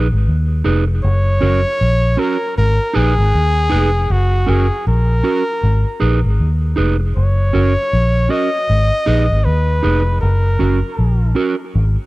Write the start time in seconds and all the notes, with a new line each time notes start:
0.12 G#1
0.28 D#2
0.64 F1 D#4 G#4 B4
1.04 F#1 C#5
1.41 F#1 C#4 F#4 A#4
1.81 A#1
2.17 C#4 F#4 A#4
2.57 G#1 A#4
2.93 A#1 D#4 G#4 B4
3.18 G#1
3.34 D#2
3.69 F1 D#4 G#4 B4
4.10 F#1 F#4
4.46 F#1 C#4 F#4 G#4 A#4
4.87 A#1 A#4
5.23 C#4 F#4 A#4
5.63 G#1
6.00 A#1 D#4 G#4 B4
6.25 G#1
6.40 D#2
6.76 F1 D#4 G#4 B4
7.00 muted clean electric guitar stroke
7.16 F#1 C#5
7.53 F#1 C#4 F#4 A#4
7.93 A#1
8.29 C#4 F#4 A#4 D#5
8.69 G#1
9.06 A#1 D#4 G#4 B4
9.31 G#1
9.45 D#2 B4
9.83 F1 D#4 G#4 B4
10.06 muted clean electric guitar stroke
10.21 F#1 A#4
10.59 F#1 C#4 F#4 A#4
10.99 A#1
11.35 C#4 F#4 A#4
11.75 G#1